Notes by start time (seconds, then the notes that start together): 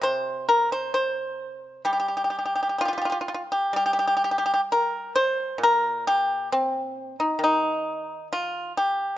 0.01 C3 C5
0.49 A#4
0.72 C5
0.94 C5
1.85 G3 G4
1.93 G4
2.00 G4
2.08 G4
2.17 G4
2.24 G4
2.30 G4
2.39 G4
2.45 G4
2.55 G4
2.63 G4
2.69 G4
2.78 F4 G4
2.85 F4 G4
2.93 G4
2.98 F4 G4
3.05 F4
3.10 F4 G4
3.21 F4
3.28 F4
3.34 F4
3.52 G4
3.73 G3 G4
3.86 G4
3.93 G4
3.99 G4
4.07 G4
4.17 G4
4.24 G4
4.31 G4
4.38 G4
4.46 G4
4.54 G4
4.72 A#4
5.16 C5
5.58 A#2
5.63 A#4
6.07 G4
6.52 C4
7.20 D#4
7.39 D#3
7.44 D#4
8.33 F4
8.77 G4